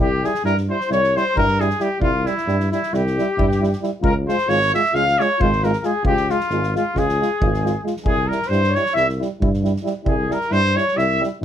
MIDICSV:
0, 0, Header, 1, 7, 480
1, 0, Start_track
1, 0, Tempo, 447427
1, 2162, Time_signature, 9, 3, 24, 8
1, 12279, End_track
2, 0, Start_track
2, 0, Title_t, "Flugelhorn"
2, 0, Program_c, 0, 56
2, 2, Note_on_c, 0, 67, 81
2, 250, Note_on_c, 0, 68, 64
2, 267, Note_off_c, 0, 67, 0
2, 481, Note_off_c, 0, 68, 0
2, 487, Note_on_c, 0, 70, 69
2, 605, Note_off_c, 0, 70, 0
2, 761, Note_on_c, 0, 72, 67
2, 967, Note_off_c, 0, 72, 0
2, 991, Note_on_c, 0, 73, 96
2, 1262, Note_on_c, 0, 72, 82
2, 1278, Note_off_c, 0, 73, 0
2, 1447, Note_off_c, 0, 72, 0
2, 1454, Note_on_c, 0, 70, 94
2, 1721, Note_on_c, 0, 68, 75
2, 1737, Note_off_c, 0, 70, 0
2, 1933, Note_on_c, 0, 67, 63
2, 1949, Note_off_c, 0, 68, 0
2, 2155, Note_off_c, 0, 67, 0
2, 2161, Note_on_c, 0, 65, 78
2, 2436, Note_on_c, 0, 64, 63
2, 2453, Note_off_c, 0, 65, 0
2, 2908, Note_off_c, 0, 64, 0
2, 2915, Note_on_c, 0, 64, 65
2, 3151, Note_on_c, 0, 67, 84
2, 3167, Note_off_c, 0, 64, 0
2, 4108, Note_off_c, 0, 67, 0
2, 4322, Note_on_c, 0, 70, 87
2, 4441, Note_off_c, 0, 70, 0
2, 4597, Note_on_c, 0, 72, 65
2, 4816, Note_on_c, 0, 73, 73
2, 4833, Note_off_c, 0, 72, 0
2, 5079, Note_off_c, 0, 73, 0
2, 5087, Note_on_c, 0, 76, 76
2, 5326, Note_on_c, 0, 77, 89
2, 5342, Note_off_c, 0, 76, 0
2, 5605, Note_on_c, 0, 73, 78
2, 5621, Note_off_c, 0, 77, 0
2, 5803, Note_on_c, 0, 72, 77
2, 5819, Note_off_c, 0, 73, 0
2, 6063, Note_on_c, 0, 70, 68
2, 6080, Note_off_c, 0, 72, 0
2, 6221, Note_off_c, 0, 70, 0
2, 6221, Note_on_c, 0, 70, 50
2, 6255, Note_on_c, 0, 68, 66
2, 6271, Note_off_c, 0, 70, 0
2, 6481, Note_off_c, 0, 68, 0
2, 6501, Note_on_c, 0, 67, 94
2, 6771, Note_on_c, 0, 65, 71
2, 6787, Note_off_c, 0, 67, 0
2, 7244, Note_off_c, 0, 65, 0
2, 7250, Note_on_c, 0, 65, 61
2, 7485, Note_on_c, 0, 68, 78
2, 7501, Note_off_c, 0, 65, 0
2, 8433, Note_off_c, 0, 68, 0
2, 8628, Note_on_c, 0, 68, 78
2, 8869, Note_on_c, 0, 70, 62
2, 8885, Note_off_c, 0, 68, 0
2, 9080, Note_on_c, 0, 72, 80
2, 9096, Note_off_c, 0, 70, 0
2, 9327, Note_on_c, 0, 73, 71
2, 9343, Note_off_c, 0, 72, 0
2, 9578, Note_off_c, 0, 73, 0
2, 9584, Note_on_c, 0, 76, 88
2, 9711, Note_off_c, 0, 76, 0
2, 10815, Note_on_c, 0, 68, 74
2, 11097, Note_on_c, 0, 70, 61
2, 11113, Note_off_c, 0, 68, 0
2, 11296, Note_on_c, 0, 72, 63
2, 11312, Note_off_c, 0, 70, 0
2, 11557, Note_on_c, 0, 73, 77
2, 11573, Note_off_c, 0, 72, 0
2, 11782, Note_on_c, 0, 76, 94
2, 11798, Note_off_c, 0, 73, 0
2, 12040, Note_off_c, 0, 76, 0
2, 12279, End_track
3, 0, Start_track
3, 0, Title_t, "Trumpet"
3, 0, Program_c, 1, 56
3, 20, Note_on_c, 1, 67, 83
3, 270, Note_on_c, 1, 68, 79
3, 286, Note_off_c, 1, 67, 0
3, 478, Note_off_c, 1, 68, 0
3, 485, Note_on_c, 1, 70, 84
3, 603, Note_off_c, 1, 70, 0
3, 749, Note_on_c, 1, 72, 78
3, 961, Note_off_c, 1, 72, 0
3, 980, Note_on_c, 1, 73, 88
3, 1250, Note_on_c, 1, 72, 90
3, 1266, Note_off_c, 1, 73, 0
3, 1474, Note_off_c, 1, 72, 0
3, 1478, Note_on_c, 1, 70, 98
3, 1721, Note_on_c, 1, 68, 83
3, 1737, Note_off_c, 1, 70, 0
3, 1952, Note_on_c, 1, 67, 76
3, 1968, Note_off_c, 1, 68, 0
3, 2149, Note_off_c, 1, 67, 0
3, 2155, Note_on_c, 1, 65, 86
3, 2427, Note_on_c, 1, 64, 79
3, 2443, Note_off_c, 1, 65, 0
3, 2907, Note_off_c, 1, 64, 0
3, 2914, Note_on_c, 1, 64, 69
3, 3153, Note_on_c, 1, 67, 74
3, 3169, Note_off_c, 1, 64, 0
3, 4108, Note_off_c, 1, 67, 0
3, 4330, Note_on_c, 1, 70, 80
3, 4447, Note_off_c, 1, 70, 0
3, 4592, Note_on_c, 1, 72, 86
3, 4811, Note_on_c, 1, 73, 99
3, 4827, Note_off_c, 1, 72, 0
3, 5077, Note_off_c, 1, 73, 0
3, 5091, Note_on_c, 1, 76, 96
3, 5305, Note_on_c, 1, 77, 95
3, 5321, Note_off_c, 1, 76, 0
3, 5567, Note_on_c, 1, 73, 97
3, 5583, Note_off_c, 1, 77, 0
3, 5798, Note_on_c, 1, 72, 85
3, 5814, Note_off_c, 1, 73, 0
3, 6051, Note_on_c, 1, 70, 80
3, 6067, Note_off_c, 1, 72, 0
3, 6215, Note_off_c, 1, 70, 0
3, 6215, Note_on_c, 1, 70, 57
3, 6281, Note_on_c, 1, 68, 86
3, 6297, Note_off_c, 1, 70, 0
3, 6495, Note_off_c, 1, 68, 0
3, 6500, Note_on_c, 1, 67, 87
3, 6766, Note_on_c, 1, 65, 88
3, 6782, Note_off_c, 1, 67, 0
3, 7247, Note_off_c, 1, 65, 0
3, 7263, Note_on_c, 1, 65, 76
3, 7490, Note_on_c, 1, 68, 82
3, 7506, Note_off_c, 1, 65, 0
3, 8435, Note_off_c, 1, 68, 0
3, 8649, Note_on_c, 1, 68, 82
3, 8888, Note_on_c, 1, 70, 80
3, 8904, Note_off_c, 1, 68, 0
3, 9098, Note_on_c, 1, 72, 92
3, 9115, Note_off_c, 1, 70, 0
3, 9381, Note_on_c, 1, 73, 95
3, 9397, Note_off_c, 1, 72, 0
3, 9604, Note_off_c, 1, 73, 0
3, 9611, Note_on_c, 1, 76, 92
3, 9731, Note_off_c, 1, 76, 0
3, 10813, Note_on_c, 1, 68, 69
3, 11073, Note_on_c, 1, 70, 84
3, 11089, Note_off_c, 1, 68, 0
3, 11287, Note_on_c, 1, 72, 103
3, 11303, Note_off_c, 1, 70, 0
3, 11544, Note_on_c, 1, 73, 85
3, 11560, Note_off_c, 1, 72, 0
3, 11767, Note_on_c, 1, 76, 94
3, 11783, Note_off_c, 1, 73, 0
3, 12033, Note_off_c, 1, 76, 0
3, 12279, End_track
4, 0, Start_track
4, 0, Title_t, "Trombone"
4, 0, Program_c, 2, 57
4, 257, Note_on_c, 2, 64, 53
4, 348, Note_off_c, 2, 64, 0
4, 474, Note_on_c, 2, 64, 61
4, 582, Note_off_c, 2, 64, 0
4, 739, Note_on_c, 2, 64, 58
4, 832, Note_off_c, 2, 64, 0
4, 958, Note_on_c, 2, 64, 59
4, 1068, Note_off_c, 2, 64, 0
4, 1241, Note_on_c, 2, 64, 59
4, 1332, Note_off_c, 2, 64, 0
4, 1468, Note_on_c, 2, 64, 71
4, 1568, Note_off_c, 2, 64, 0
4, 1712, Note_on_c, 2, 64, 63
4, 1802, Note_off_c, 2, 64, 0
4, 1929, Note_on_c, 2, 64, 63
4, 2020, Note_off_c, 2, 64, 0
4, 2157, Note_on_c, 2, 64, 67
4, 2264, Note_off_c, 2, 64, 0
4, 2427, Note_on_c, 2, 64, 63
4, 2518, Note_off_c, 2, 64, 0
4, 2652, Note_on_c, 2, 64, 60
4, 2757, Note_off_c, 2, 64, 0
4, 2908, Note_on_c, 2, 64, 62
4, 3001, Note_off_c, 2, 64, 0
4, 3140, Note_on_c, 2, 64, 68
4, 3246, Note_off_c, 2, 64, 0
4, 3419, Note_on_c, 2, 64, 64
4, 3508, Note_off_c, 2, 64, 0
4, 3622, Note_on_c, 2, 64, 73
4, 3723, Note_off_c, 2, 64, 0
4, 3864, Note_on_c, 2, 64, 62
4, 3957, Note_off_c, 2, 64, 0
4, 4099, Note_on_c, 2, 64, 66
4, 4189, Note_off_c, 2, 64, 0
4, 4305, Note_on_c, 2, 65, 65
4, 4415, Note_off_c, 2, 65, 0
4, 4579, Note_on_c, 2, 65, 70
4, 4672, Note_off_c, 2, 65, 0
4, 4804, Note_on_c, 2, 65, 63
4, 4911, Note_off_c, 2, 65, 0
4, 5079, Note_on_c, 2, 65, 59
4, 5170, Note_off_c, 2, 65, 0
4, 5288, Note_on_c, 2, 65, 63
4, 5397, Note_off_c, 2, 65, 0
4, 5559, Note_on_c, 2, 65, 60
4, 5652, Note_off_c, 2, 65, 0
4, 5786, Note_on_c, 2, 65, 67
4, 5887, Note_off_c, 2, 65, 0
4, 6033, Note_on_c, 2, 65, 62
4, 6124, Note_off_c, 2, 65, 0
4, 6261, Note_on_c, 2, 65, 60
4, 6350, Note_off_c, 2, 65, 0
4, 6478, Note_on_c, 2, 65, 62
4, 6585, Note_off_c, 2, 65, 0
4, 6746, Note_on_c, 2, 65, 63
4, 6837, Note_off_c, 2, 65, 0
4, 6972, Note_on_c, 2, 65, 57
4, 7077, Note_off_c, 2, 65, 0
4, 7237, Note_on_c, 2, 65, 60
4, 7328, Note_off_c, 2, 65, 0
4, 7461, Note_on_c, 2, 65, 63
4, 7567, Note_off_c, 2, 65, 0
4, 7730, Note_on_c, 2, 65, 56
4, 7820, Note_off_c, 2, 65, 0
4, 7953, Note_on_c, 2, 65, 52
4, 8052, Note_off_c, 2, 65, 0
4, 8193, Note_on_c, 2, 65, 51
4, 8283, Note_off_c, 2, 65, 0
4, 8424, Note_on_c, 2, 65, 53
4, 8512, Note_off_c, 2, 65, 0
4, 8643, Note_on_c, 2, 64, 59
4, 8748, Note_off_c, 2, 64, 0
4, 8919, Note_on_c, 2, 64, 53
4, 9007, Note_off_c, 2, 64, 0
4, 9145, Note_on_c, 2, 64, 57
4, 9248, Note_off_c, 2, 64, 0
4, 9391, Note_on_c, 2, 64, 52
4, 9483, Note_off_c, 2, 64, 0
4, 9603, Note_on_c, 2, 64, 69
4, 9712, Note_off_c, 2, 64, 0
4, 9855, Note_on_c, 2, 64, 59
4, 9952, Note_off_c, 2, 64, 0
4, 10098, Note_on_c, 2, 64, 64
4, 10199, Note_off_c, 2, 64, 0
4, 10329, Note_on_c, 2, 64, 57
4, 10423, Note_off_c, 2, 64, 0
4, 10547, Note_on_c, 2, 64, 64
4, 10642, Note_off_c, 2, 64, 0
4, 10776, Note_on_c, 2, 64, 65
4, 10886, Note_off_c, 2, 64, 0
4, 11042, Note_on_c, 2, 64, 58
4, 11136, Note_off_c, 2, 64, 0
4, 11262, Note_on_c, 2, 64, 66
4, 11372, Note_off_c, 2, 64, 0
4, 11534, Note_on_c, 2, 64, 59
4, 11627, Note_off_c, 2, 64, 0
4, 11758, Note_on_c, 2, 64, 69
4, 11866, Note_off_c, 2, 64, 0
4, 12029, Note_on_c, 2, 64, 63
4, 12121, Note_off_c, 2, 64, 0
4, 12279, End_track
5, 0, Start_track
5, 0, Title_t, "Euphonium"
5, 0, Program_c, 3, 58
5, 254, Note_on_c, 3, 55, 49
5, 345, Note_off_c, 3, 55, 0
5, 480, Note_on_c, 3, 55, 64
5, 587, Note_off_c, 3, 55, 0
5, 735, Note_on_c, 3, 55, 48
5, 829, Note_off_c, 3, 55, 0
5, 966, Note_on_c, 3, 55, 59
5, 1074, Note_off_c, 3, 55, 0
5, 1233, Note_on_c, 3, 55, 60
5, 1326, Note_off_c, 3, 55, 0
5, 1454, Note_on_c, 3, 55, 69
5, 1556, Note_off_c, 3, 55, 0
5, 1712, Note_on_c, 3, 55, 67
5, 1802, Note_off_c, 3, 55, 0
5, 1928, Note_on_c, 3, 55, 59
5, 2019, Note_off_c, 3, 55, 0
5, 2138, Note_on_c, 3, 55, 61
5, 2248, Note_off_c, 3, 55, 0
5, 2404, Note_on_c, 3, 55, 61
5, 2500, Note_off_c, 3, 55, 0
5, 2650, Note_on_c, 3, 55, 67
5, 2756, Note_off_c, 3, 55, 0
5, 2918, Note_on_c, 3, 55, 53
5, 3009, Note_off_c, 3, 55, 0
5, 3140, Note_on_c, 3, 55, 60
5, 3246, Note_off_c, 3, 55, 0
5, 3408, Note_on_c, 3, 55, 69
5, 3499, Note_off_c, 3, 55, 0
5, 3633, Note_on_c, 3, 55, 69
5, 3732, Note_off_c, 3, 55, 0
5, 3872, Note_on_c, 3, 55, 69
5, 3963, Note_off_c, 3, 55, 0
5, 4094, Note_on_c, 3, 55, 69
5, 4184, Note_off_c, 3, 55, 0
5, 4319, Note_on_c, 3, 56, 62
5, 4426, Note_off_c, 3, 56, 0
5, 4588, Note_on_c, 3, 56, 62
5, 4679, Note_off_c, 3, 56, 0
5, 4811, Note_on_c, 3, 56, 65
5, 4918, Note_off_c, 3, 56, 0
5, 5080, Note_on_c, 3, 56, 58
5, 5171, Note_off_c, 3, 56, 0
5, 5301, Note_on_c, 3, 56, 66
5, 5407, Note_off_c, 3, 56, 0
5, 5568, Note_on_c, 3, 56, 68
5, 5659, Note_off_c, 3, 56, 0
5, 5810, Note_on_c, 3, 56, 75
5, 5906, Note_off_c, 3, 56, 0
5, 6049, Note_on_c, 3, 56, 66
5, 6136, Note_off_c, 3, 56, 0
5, 6271, Note_on_c, 3, 56, 63
5, 6359, Note_off_c, 3, 56, 0
5, 6486, Note_on_c, 3, 56, 59
5, 6591, Note_off_c, 3, 56, 0
5, 6761, Note_on_c, 3, 56, 54
5, 6850, Note_off_c, 3, 56, 0
5, 6982, Note_on_c, 3, 56, 65
5, 7086, Note_off_c, 3, 56, 0
5, 7240, Note_on_c, 3, 56, 53
5, 7330, Note_off_c, 3, 56, 0
5, 7457, Note_on_c, 3, 56, 54
5, 7564, Note_off_c, 3, 56, 0
5, 7711, Note_on_c, 3, 56, 60
5, 7805, Note_off_c, 3, 56, 0
5, 7948, Note_on_c, 3, 56, 57
5, 8048, Note_off_c, 3, 56, 0
5, 8189, Note_on_c, 3, 56, 54
5, 8280, Note_off_c, 3, 56, 0
5, 8407, Note_on_c, 3, 56, 56
5, 8499, Note_off_c, 3, 56, 0
5, 8627, Note_on_c, 3, 55, 53
5, 8735, Note_off_c, 3, 55, 0
5, 8891, Note_on_c, 3, 55, 51
5, 8985, Note_off_c, 3, 55, 0
5, 9116, Note_on_c, 3, 55, 61
5, 9224, Note_off_c, 3, 55, 0
5, 9380, Note_on_c, 3, 55, 57
5, 9474, Note_off_c, 3, 55, 0
5, 9615, Note_on_c, 3, 55, 55
5, 9722, Note_off_c, 3, 55, 0
5, 9880, Note_on_c, 3, 55, 64
5, 9972, Note_off_c, 3, 55, 0
5, 10091, Note_on_c, 3, 55, 66
5, 10194, Note_off_c, 3, 55, 0
5, 10329, Note_on_c, 3, 55, 68
5, 10423, Note_off_c, 3, 55, 0
5, 10548, Note_on_c, 3, 55, 74
5, 10643, Note_off_c, 3, 55, 0
5, 10769, Note_on_c, 3, 55, 70
5, 10880, Note_off_c, 3, 55, 0
5, 11035, Note_on_c, 3, 55, 61
5, 11131, Note_off_c, 3, 55, 0
5, 11276, Note_on_c, 3, 55, 63
5, 11383, Note_off_c, 3, 55, 0
5, 11523, Note_on_c, 3, 55, 53
5, 11619, Note_off_c, 3, 55, 0
5, 11740, Note_on_c, 3, 55, 65
5, 11852, Note_off_c, 3, 55, 0
5, 12011, Note_on_c, 3, 55, 71
5, 12106, Note_off_c, 3, 55, 0
5, 12245, Note_on_c, 3, 55, 69
5, 12279, Note_off_c, 3, 55, 0
5, 12279, End_track
6, 0, Start_track
6, 0, Title_t, "Tuba"
6, 0, Program_c, 4, 58
6, 0, Note_on_c, 4, 36, 84
6, 251, Note_off_c, 4, 36, 0
6, 469, Note_on_c, 4, 43, 80
6, 744, Note_off_c, 4, 43, 0
6, 968, Note_on_c, 4, 36, 78
6, 1241, Note_off_c, 4, 36, 0
6, 1465, Note_on_c, 4, 43, 90
6, 1847, Note_off_c, 4, 43, 0
6, 2150, Note_on_c, 4, 36, 90
6, 2424, Note_off_c, 4, 36, 0
6, 2649, Note_on_c, 4, 43, 90
6, 2920, Note_off_c, 4, 43, 0
6, 3137, Note_on_c, 4, 36, 95
6, 3409, Note_off_c, 4, 36, 0
6, 3623, Note_on_c, 4, 43, 88
6, 4006, Note_off_c, 4, 43, 0
6, 4310, Note_on_c, 4, 37, 92
6, 4584, Note_off_c, 4, 37, 0
6, 4797, Note_on_c, 4, 32, 85
6, 5072, Note_off_c, 4, 32, 0
6, 5296, Note_on_c, 4, 37, 83
6, 5568, Note_off_c, 4, 37, 0
6, 5784, Note_on_c, 4, 32, 95
6, 6167, Note_off_c, 4, 32, 0
6, 6478, Note_on_c, 4, 37, 85
6, 6750, Note_off_c, 4, 37, 0
6, 6966, Note_on_c, 4, 32, 87
6, 7238, Note_off_c, 4, 32, 0
6, 7461, Note_on_c, 4, 37, 92
6, 7731, Note_off_c, 4, 37, 0
6, 7943, Note_on_c, 4, 32, 92
6, 8325, Note_off_c, 4, 32, 0
6, 8634, Note_on_c, 4, 36, 87
6, 8906, Note_off_c, 4, 36, 0
6, 9120, Note_on_c, 4, 43, 95
6, 9393, Note_off_c, 4, 43, 0
6, 9606, Note_on_c, 4, 36, 84
6, 9879, Note_off_c, 4, 36, 0
6, 10091, Note_on_c, 4, 43, 91
6, 10475, Note_off_c, 4, 43, 0
6, 10793, Note_on_c, 4, 36, 86
6, 11063, Note_off_c, 4, 36, 0
6, 11283, Note_on_c, 4, 43, 91
6, 11553, Note_off_c, 4, 43, 0
6, 11772, Note_on_c, 4, 36, 83
6, 12040, Note_off_c, 4, 36, 0
6, 12279, End_track
7, 0, Start_track
7, 0, Title_t, "Drums"
7, 257, Note_on_c, 9, 38, 28
7, 365, Note_off_c, 9, 38, 0
7, 369, Note_on_c, 9, 38, 29
7, 476, Note_off_c, 9, 38, 0
7, 489, Note_on_c, 9, 38, 24
7, 596, Note_off_c, 9, 38, 0
7, 615, Note_on_c, 9, 38, 25
7, 722, Note_off_c, 9, 38, 0
7, 861, Note_on_c, 9, 38, 24
7, 968, Note_off_c, 9, 38, 0
7, 981, Note_on_c, 9, 38, 29
7, 1089, Note_off_c, 9, 38, 0
7, 1110, Note_on_c, 9, 38, 27
7, 1217, Note_off_c, 9, 38, 0
7, 1249, Note_on_c, 9, 38, 25
7, 1357, Note_off_c, 9, 38, 0
7, 1472, Note_on_c, 9, 36, 77
7, 1579, Note_off_c, 9, 36, 0
7, 1586, Note_on_c, 9, 38, 23
7, 1693, Note_off_c, 9, 38, 0
7, 1714, Note_on_c, 9, 38, 25
7, 1821, Note_off_c, 9, 38, 0
7, 1821, Note_on_c, 9, 38, 24
7, 1928, Note_off_c, 9, 38, 0
7, 1928, Note_on_c, 9, 38, 28
7, 2035, Note_off_c, 9, 38, 0
7, 2162, Note_on_c, 9, 36, 77
7, 2269, Note_off_c, 9, 36, 0
7, 2422, Note_on_c, 9, 38, 30
7, 2529, Note_off_c, 9, 38, 0
7, 2546, Note_on_c, 9, 38, 26
7, 2654, Note_off_c, 9, 38, 0
7, 2659, Note_on_c, 9, 38, 22
7, 2766, Note_off_c, 9, 38, 0
7, 2786, Note_on_c, 9, 38, 25
7, 2893, Note_off_c, 9, 38, 0
7, 2915, Note_on_c, 9, 38, 29
7, 3022, Note_off_c, 9, 38, 0
7, 3033, Note_on_c, 9, 38, 26
7, 3140, Note_off_c, 9, 38, 0
7, 3152, Note_on_c, 9, 38, 29
7, 3259, Note_off_c, 9, 38, 0
7, 3288, Note_on_c, 9, 38, 25
7, 3395, Note_off_c, 9, 38, 0
7, 3414, Note_on_c, 9, 38, 28
7, 3521, Note_off_c, 9, 38, 0
7, 3639, Note_on_c, 9, 36, 89
7, 3747, Note_off_c, 9, 36, 0
7, 3767, Note_on_c, 9, 38, 28
7, 3874, Note_off_c, 9, 38, 0
7, 3897, Note_on_c, 9, 38, 26
7, 3996, Note_off_c, 9, 38, 0
7, 3996, Note_on_c, 9, 38, 25
7, 4103, Note_off_c, 9, 38, 0
7, 4111, Note_on_c, 9, 38, 26
7, 4218, Note_off_c, 9, 38, 0
7, 4331, Note_on_c, 9, 36, 88
7, 4438, Note_off_c, 9, 36, 0
7, 4596, Note_on_c, 9, 38, 33
7, 4700, Note_off_c, 9, 38, 0
7, 4700, Note_on_c, 9, 38, 30
7, 4807, Note_off_c, 9, 38, 0
7, 4814, Note_on_c, 9, 38, 26
7, 4921, Note_off_c, 9, 38, 0
7, 4952, Note_on_c, 9, 38, 30
7, 5059, Note_off_c, 9, 38, 0
7, 5084, Note_on_c, 9, 38, 29
7, 5191, Note_off_c, 9, 38, 0
7, 5193, Note_on_c, 9, 38, 28
7, 5300, Note_off_c, 9, 38, 0
7, 5306, Note_on_c, 9, 38, 28
7, 5413, Note_off_c, 9, 38, 0
7, 5445, Note_on_c, 9, 38, 27
7, 5552, Note_off_c, 9, 38, 0
7, 5577, Note_on_c, 9, 38, 28
7, 5684, Note_off_c, 9, 38, 0
7, 5802, Note_on_c, 9, 36, 89
7, 5909, Note_off_c, 9, 36, 0
7, 5923, Note_on_c, 9, 38, 24
7, 6030, Note_off_c, 9, 38, 0
7, 6040, Note_on_c, 9, 38, 33
7, 6145, Note_off_c, 9, 38, 0
7, 6145, Note_on_c, 9, 38, 27
7, 6252, Note_off_c, 9, 38, 0
7, 6254, Note_on_c, 9, 38, 28
7, 6361, Note_off_c, 9, 38, 0
7, 6487, Note_on_c, 9, 36, 83
7, 6594, Note_off_c, 9, 36, 0
7, 6616, Note_on_c, 9, 38, 27
7, 6723, Note_off_c, 9, 38, 0
7, 6751, Note_on_c, 9, 38, 31
7, 6859, Note_off_c, 9, 38, 0
7, 6865, Note_on_c, 9, 38, 28
7, 6970, Note_off_c, 9, 38, 0
7, 6970, Note_on_c, 9, 38, 25
7, 7077, Note_off_c, 9, 38, 0
7, 7111, Note_on_c, 9, 38, 25
7, 7218, Note_off_c, 9, 38, 0
7, 7245, Note_on_c, 9, 38, 26
7, 7353, Note_off_c, 9, 38, 0
7, 7466, Note_on_c, 9, 38, 30
7, 7468, Note_on_c, 9, 36, 64
7, 7573, Note_off_c, 9, 38, 0
7, 7575, Note_off_c, 9, 36, 0
7, 7603, Note_on_c, 9, 38, 27
7, 7710, Note_off_c, 9, 38, 0
7, 7746, Note_on_c, 9, 38, 29
7, 7853, Note_off_c, 9, 38, 0
7, 7957, Note_on_c, 9, 36, 91
7, 8064, Note_off_c, 9, 36, 0
7, 8084, Note_on_c, 9, 38, 25
7, 8191, Note_off_c, 9, 38, 0
7, 8215, Note_on_c, 9, 38, 32
7, 8322, Note_off_c, 9, 38, 0
7, 8436, Note_on_c, 9, 38, 29
7, 8542, Note_off_c, 9, 38, 0
7, 8542, Note_on_c, 9, 38, 27
7, 8645, Note_on_c, 9, 36, 85
7, 8650, Note_off_c, 9, 38, 0
7, 8752, Note_off_c, 9, 36, 0
7, 8920, Note_on_c, 9, 38, 30
7, 9027, Note_off_c, 9, 38, 0
7, 9033, Note_on_c, 9, 38, 30
7, 9136, Note_off_c, 9, 38, 0
7, 9136, Note_on_c, 9, 38, 26
7, 9243, Note_off_c, 9, 38, 0
7, 9261, Note_on_c, 9, 38, 28
7, 9368, Note_off_c, 9, 38, 0
7, 9387, Note_on_c, 9, 38, 26
7, 9494, Note_off_c, 9, 38, 0
7, 9501, Note_on_c, 9, 38, 28
7, 9608, Note_off_c, 9, 38, 0
7, 9613, Note_on_c, 9, 38, 28
7, 9720, Note_off_c, 9, 38, 0
7, 9747, Note_on_c, 9, 38, 25
7, 9855, Note_off_c, 9, 38, 0
7, 9886, Note_on_c, 9, 38, 29
7, 9993, Note_off_c, 9, 38, 0
7, 10108, Note_on_c, 9, 36, 90
7, 10215, Note_off_c, 9, 36, 0
7, 10227, Note_on_c, 9, 38, 21
7, 10335, Note_off_c, 9, 38, 0
7, 10346, Note_on_c, 9, 38, 27
7, 10453, Note_off_c, 9, 38, 0
7, 10471, Note_on_c, 9, 38, 24
7, 10578, Note_off_c, 9, 38, 0
7, 10578, Note_on_c, 9, 38, 26
7, 10685, Note_off_c, 9, 38, 0
7, 10796, Note_on_c, 9, 36, 81
7, 10903, Note_off_c, 9, 36, 0
7, 11056, Note_on_c, 9, 38, 26
7, 11163, Note_off_c, 9, 38, 0
7, 11165, Note_on_c, 9, 38, 22
7, 11273, Note_off_c, 9, 38, 0
7, 11281, Note_on_c, 9, 38, 22
7, 11389, Note_off_c, 9, 38, 0
7, 11423, Note_on_c, 9, 38, 23
7, 11530, Note_off_c, 9, 38, 0
7, 11560, Note_on_c, 9, 38, 26
7, 11667, Note_off_c, 9, 38, 0
7, 11671, Note_on_c, 9, 38, 24
7, 11779, Note_off_c, 9, 38, 0
7, 11781, Note_on_c, 9, 38, 30
7, 11889, Note_off_c, 9, 38, 0
7, 12047, Note_on_c, 9, 38, 26
7, 12154, Note_off_c, 9, 38, 0
7, 12279, End_track
0, 0, End_of_file